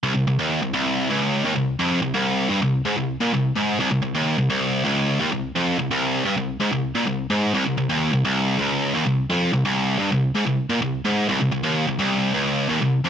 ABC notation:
X:1
M:4/4
L:1/16
Q:1/4=128
K:Cm
V:1 name="Distorted electric guitar" clef=bass
C,, C,, C,, E,,2 C,, C,,3 _D,,3 E,, C,,2 F,,- | F,, C,, C,,3 G,, C,,2 A,, C,,2 B,, C,,2 A,,2 | C,, C,, C,, E,,2 C,, C,,3 _D,,3 E,, C,,2 F,,- | F,, C,, C,,3 G,, C,,2 A,, C,,2 B,, C,,2 A,,2 |
C,, C,, C,, E,,2 C,, C,,3 _D,,3 E,, C,,2 F,,- | F,, C,, C,,3 G,, C,,2 A,, C,,2 B,, C,,2 A,,2 | C,, C,, C,, E,,2 C,, C,,3 _D,,3 E,, C,,2 F,, |]